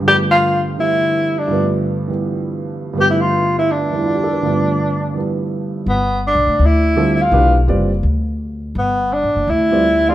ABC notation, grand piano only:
X:1
M:4/4
L:1/16
Q:"Swing" 1/4=165
K:Gmix
V:1 name="Grand piano"
z16 | z16 | z8 z2 D E F G A B | z16 |
z16 | z16 | z16 |]
V:2 name="Grand piano"
[G,,D,F,A,B,]8 [D,E,G,A,]8 | [G,,D,F,A,B,]6 [E,G,B,]8- [E,G,B,]2 | [G,,D,F,A,B,]8- [G,,D,F,A,B,]2 [E,G,B,]6 | [G,,D,F,A,B,]8 [E,G,B,]8 |
z12 [D,G,CFA]2 z2 | [E,A,DGB]2 z2 [G,CFBd]2 z8 z2 | z8 z2 [G,CFBd]2 z2 [E,A,DGd]2 |]